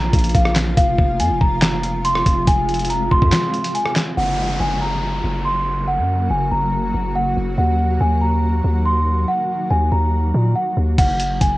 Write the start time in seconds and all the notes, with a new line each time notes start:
Already playing: A#1 C#3 F3 A#3 F4 A#5
0.13 A#1, kick, closed hi-hat
0.19 closed hi-hat
0.24 closed hi-hat
0.29 closed hi-hat
0.35 A#1 F5, kick, closed hi-hat
0.45 cross-stick
0.56 snare, clap, closed hi-hat
0.77 F1 C3 G#3 F5, kick, closed hi-hat
0.98 F1, kick
1.20 F2 G#5, closed hi-hat
1.30 F1
1.41 F1 A#5, kick
1.62 snare, clap, closed hi-hat
1.83 closed hi-hat
2.05 C6, closed hi-hat
2.15 cross-stick
2.26 F1, kick, closed hi-hat
2.47 F1 G#5, kick, closed hi-hat
2.69 closed hi-hat
2.74 closed hi-hat
2.79 closed hi-hat
2.85 closed hi-hat
2.90 A#5, closed hi-hat
3.11 F1 C6, kick
3.22 F2, kick
3.32 snare, clap, closed hi-hat
3.54 closed hi-hat
3.64 closed hi-hat
3.75 G#5, closed hi-hat
3.86 cross-stick
3.96 snare, clap, closed hi-hat
4.17 F#1 C#3 F#3 A#3 F#4 F#5, downlifter
4.60 F#1 G#5
4.81 A#5
5.24 F#1
5.45 C6
5.88 F#5
5.98 F#2
6.30 F#1 G#5
6.51 F#1 A#5
6.94 F#1
7.15 F#5
7.37 F#1
7.58 D#2 D#3 F#5
8.01 D#2 G#5
8.21 A#5
8.64 D#2
8.85 C6
9.28 F#5
9.71 D#2 G#5
9.92 D#2 A#5
10.35 A#2
10.56 F#5
10.77 D#2
10.98 F#1 F#5, kick, closed hi-hat, crash
11.20 closed hi-hat
11.41 F#1 G#5, kick, closed hi-hat